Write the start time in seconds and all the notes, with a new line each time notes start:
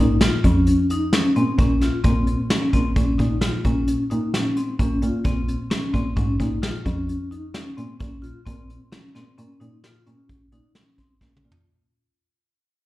0.00 A#2 D#4
0.21 F4, snare, closed hi-hat
0.44 F2 C#4, kick, closed hi-hat
0.67 closed hi-hat
0.90 D#4, closed hi-hat
1.13 C#4, snare, closed hi-hat
1.36 A#2 C4, closed hi-hat
1.58 A#2 C#4, kick, closed hi-hat
1.81 F4, snare, closed hi-hat
2.04 A#2 C4, kick, closed hi-hat
2.27 closed hi-hat
2.50 C#4, snare, closed hi-hat
2.73 A#2 C4, kick, closed hi-hat
2.96 A#2 C#4, kick, closed hi-hat
3.18 A#2 D#4, kick, closed hi-hat
3.41 F4, snare, closed hi-hat
3.65 A#2 C#4, kick, closed hi-hat
3.88 closed hi-hat
4.10 A#2 D#4, closed hi-hat
4.34 C#4, snare, closed hi-hat
4.57 C4, closed hi-hat
4.79 A#2 C#4, kick, closed hi-hat
5.02 A#2 F4, closed hi-hat
5.24 A#2 C4, kick, closed hi-hat
5.48 closed hi-hat
5.71 C#4, snare, closed hi-hat
5.93 A#2 C4, kick, closed hi-hat
6.16 G#2 C#4, kick, closed hi-hat
6.40 A#2 D#4, kick, closed hi-hat
6.62 F4, snare, closed hi-hat
6.85 F2 C#4, kick, closed hi-hat
7.09 closed hi-hat
7.31 D#4, closed hi-hat
7.54 C#4, snare, closed hi-hat
7.77 A#2 C4, closed hi-hat
8.00 A#2 C#4, kick, closed hi-hat
8.22 F4, closed hi-hat
8.46 A#2 C4, kick, closed hi-hat
8.70 closed hi-hat
8.92 C#4, snare, closed hi-hat
9.15 A#2 C4, snare, closed hi-hat
9.38 A#2 C#4, closed hi-hat
9.60 A#2 D#4, closed hi-hat
9.84 F4, snare, closed hi-hat
10.06 A#2 C#4, closed hi-hat
10.29 kick, closed hi-hat
10.52 A#2 D#4, closed hi-hat
10.75 C#4, snare, closed hi-hat
10.98 C4, kick, closed hi-hat
11.21 A#2 C#4, kick, snare
11.37 mid tom
11.44 A#2 F4
11.52 floor tom